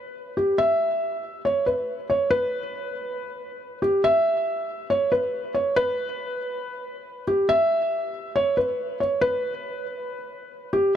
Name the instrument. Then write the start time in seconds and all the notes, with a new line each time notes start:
felt piano
Already playing: B4
0.37 G4
0.58 E5
1.45 C#5
1.66 B4
2.10 C#5
2.31 B4
3.82 G4
4.04 E5
4.90 C#5
5.12 B4
5.54 C#5
5.76 B4
7.27 G4
7.49 E5
8.36 C#5
8.57 B4
9.00 C#5
9.21 B4
10.73 G4